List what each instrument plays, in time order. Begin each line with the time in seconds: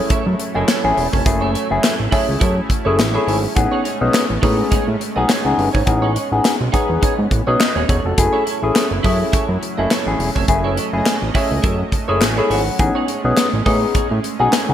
Already playing: analog synth pad F#3 A3 C#4 E4, tine electric piano A3 C#4 E4 G#4
0.10 analog synth bass F#2, clean electric guitar E4 A4 C#5, kick, closed hi-hat
0.26 analog synth bass F#2, muted clean electric guitar stroke
0.39 muted clean electric guitar stroke, closed hi-hat
0.55 analog synth bass F#1, tine electric piano A3 C#4 E4 G#4, clean electric guitar E4 A4 D#5
0.67 clean electric guitar E4 A4 C#5, snare, clap, closed hi-hat
0.84 analog synth bass A1, tine electric piano A3 C#4 E4 G#4, muted clean electric guitar stroke
0.97 analog synth bass E1, muted clean electric guitar stroke, open hi-hat
1.13 analog synth bass F1, clean electric guitar E4 A4 C#5, kick
1.26 analog synth bass F#1, tine electric piano A3 C#4 E4 G#4, analog synth pad E4, muted clean electric guitar stroke, kick, closed hi-hat
1.41 clean electric guitar E4 A4 C#5
1.54 clean electric guitar E4 A4 C#5, closed hi-hat
1.70 analog synth bass F#1, tine electric piano A3 C#4 E4 G#4, muted clean electric guitar stroke
1.84 snare, clap, closed hi-hat
1.99 analog synth bass A1, muted clean electric guitar stroke
2.11 tine electric piano A3 C#4 E4 G#4, clean electric guitar E4 A4 C#5, kick, open hi-hat
2.28 analog synth bass C#2, muted clean electric guitar stroke
2.40 analog synth bass F#2, clean electric guitar E4 A4 C#5, kick, closed hi-hat
2.56 muted clean electric guitar stroke
2.69 muted clean electric guitar stroke, kick, closed hi-hat
2.85 analog synth bass F#1, tine electric piano A3 C#4 E4 G#4, clean electric guitar E4 A4 C#5
2.98 analog synth bass A1, tine electric piano E5, muted clean electric guitar stroke, snare, clap, closed hi-hat
3.14 tine electric piano A3 C#4 E4 G#4, clean electric guitar E4 A4 C#5
3.27 analog synth bass G#1, clean electric guitar E4 A4 C#5, open hi-hat
3.43 muted clean electric guitar stroke
3.55 analog synth bass A1, analog synth pad G#3 A3, tine electric piano B3 C#4 D#4 G#4, muted clean electric guitar stroke, kick, closed hi-hat
3.72 clean electric guitar D#4 G#4 C#5
3.84 clean electric guitar D#4 G#4 C#5, closed hi-hat
4.00 analog synth bass B1, tine electric piano B3 C#4 D#4 G#4, muted clean electric guitar stroke
4.14 snare, clap, closed hi-hat
4.29 analog synth bass A1, muted clean electric guitar stroke
4.42 analog synth bass A2, tine electric piano B3 C#4 D#4 G#4, clean electric guitar D#4 G#4 C#5, kick, open hi-hat
4.58 muted clean electric guitar stroke
4.71 analog synth bass A2, clean electric guitar D#4 G#4 C#5, kick, closed hi-hat
4.87 analog synth bass A2, muted clean electric guitar stroke
5.00 muted clean electric guitar stroke, closed hi-hat
5.16 analog synth bass B1, tine electric piano B3 C#4 D#4 G#4, clean electric guitar D#4 G#4 D#5
5.28 clean electric guitar D#4 G#4 C#5, snare, clap, closed hi-hat
5.45 analog synth bass C#2, tine electric piano B3 C#4 D#4 G#4, muted clean electric guitar stroke
5.57 analog synth bass G1, muted clean electric guitar stroke, open hi-hat
5.73 analog synth bass G#1, clean electric guitar D#4 G#4 C#5, kick
5.86 analog synth bass A1, tine electric piano B3 C#4 D#4 G#4, analog synth pad B3, muted clean electric guitar stroke, kick, closed hi-hat
6.02 clean electric guitar D#4 G#4 C#5
6.15 clean electric guitar D#4 G#4 C#5, closed hi-hat
6.31 analog synth bass A1, tine electric piano B3 C#4 D#4 G#4, muted clean electric guitar stroke
6.45 snare, clap, closed hi-hat
6.60 analog synth bass B1, muted clean electric guitar stroke
6.72 tine electric piano B3 C#4 D#4 G#4, clean electric guitar D#4 G#4 C#5, kick, closed hi-hat
6.89 analog synth bass E2, muted clean electric guitar stroke
7.02 clean electric guitar D#4 G#4 C#5, kick, closed hi-hat
7.18 analog synth bass G#2, muted clean electric guitar stroke
7.31 analog synth bass A1, muted clean electric guitar stroke, kick, closed hi-hat
7.47 analog synth bass B1, tine electric piano B3 C#4 D#4 G#4, clean electric guitar D#4 G#4 C#5
7.59 tine electric piano B4 D#5, muted clean electric guitar stroke, snare, clap, closed hi-hat
7.75 analog synth bass D#1, clean electric guitar D#4 G#4 C#5
7.88 analog synth bass E1, clean electric guitar D#4 G#4 C#5, tine electric piano A4 C#5, kick, closed hi-hat
8.04 analog synth bass F1, tine electric piano F#4 A4, muted clean electric guitar stroke
8.17 analog synth bass F#1, analog synth pad F#3 A3 C#4 E4, tine electric piano A3 C#4 E4 G#4, muted clean electric guitar stroke, kick, closed hi-hat
8.33 clean electric guitar E4 A4 C#5
8.46 clean electric guitar E4 A4 C#5, closed hi-hat
8.62 analog synth bass A1, tine electric piano A3 C#4 E4 G#4, muted clean electric guitar stroke
8.76 snare, clap, closed hi-hat
8.91 analog synth bass F#1, muted clean electric guitar stroke
9.03 analog synth bass F#2, tine electric piano A3 C#4 E4 G#4, clean electric guitar E4 A4 C#5, kick, open hi-hat
9.20 muted clean electric guitar stroke
9.32 analog synth bass F#2, clean electric guitar E4 A4 C#5, kick, closed hi-hat
9.49 analog synth bass F#2, muted clean electric guitar stroke
9.62 muted clean electric guitar stroke, closed hi-hat
9.77 analog synth bass F#1, tine electric piano A3 C#4 E4 G#4, clean electric guitar E4 A4 D#5
9.90 clean electric guitar E4 A4 C#5, snare, clap, closed hi-hat
10.07 analog synth bass A1, tine electric piano A3 C#4 E4 G#4, muted clean electric guitar stroke
10.19 analog synth bass E1, muted clean electric guitar stroke, open hi-hat
10.35 analog synth bass F1, clean electric guitar E4 A4 C#5, kick
10.48 analog synth bass F#1, tine electric piano A3 C#4 E4 G#4, analog synth pad D#5, muted clean electric guitar stroke, kick, closed hi-hat
10.64 clean electric guitar E4 A4 C#5
10.77 clean electric guitar E4 A4 C#5, closed hi-hat
10.93 analog synth bass F#1, tine electric piano A3 C#4 E4 G#4, muted clean electric guitar stroke
11.06 snare, clap, closed hi-hat
11.22 analog synth bass A1, muted clean electric guitar stroke
11.34 tine electric piano A3 C#4 E4 G#4, clean electric guitar E4 A4 C#5, kick, open hi-hat
11.50 analog synth bass C#2, muted clean electric guitar stroke
11.62 analog synth bass F#2, clean electric guitar E4 A4 C#5, kick, closed hi-hat
11.79 muted clean electric guitar stroke
11.92 tine electric piano A5, muted clean electric guitar stroke, kick, closed hi-hat
12.08 analog synth bass F#1, tine electric piano A3 C#4 E4 G#4, clean electric guitar E4 A4 C#5
12.21 analog synth bass A1, tine electric piano G#5, muted clean electric guitar stroke, snare, clap, closed hi-hat
12.37 tine electric piano A3 C#4 E4 G#4, clean electric guitar E4 A4 C#5
12.50 analog synth bass G#1, clean electric guitar E4 A4 C#5, tine electric piano F#5, open hi-hat
12.67 muted clean electric guitar stroke
12.79 analog synth bass A1, analog synth pad G#3 A3 C#4, tine electric piano B3 C#4 D#4 G#4, muted clean electric guitar stroke, kick, closed hi-hat
12.95 clean electric guitar D#4 G#4 C#5
13.08 clean electric guitar D#4 G#4 C#5, closed hi-hat
13.24 analog synth bass B1, tine electric piano B3 C#4 D#4 G#4, muted clean electric guitar stroke
13.37 snare, clap, closed hi-hat
13.53 analog synth bass A1, muted clean electric guitar stroke
13.65 analog synth bass A2, tine electric piano B3 C#4 D#4 G#4, clean electric guitar D#4 G#4 C#5, kick, open hi-hat
13.82 muted clean electric guitar stroke
13.95 analog synth bass A2, clean electric guitar D#4 G#4 C#5, kick, closed hi-hat
14.11 analog synth bass A2, muted clean electric guitar stroke
14.24 muted clean electric guitar stroke, closed hi-hat
14.39 analog synth bass B1, tine electric piano B3 C#4 D#4 G#4, clean electric guitar D#4 G#4 D#5
14.52 clean electric guitar D#4 G#4 C#5, snare, clap, closed hi-hat
14.69 analog synth bass C#2, tine electric piano B3 C#4 D#4 G#4, muted clean electric guitar stroke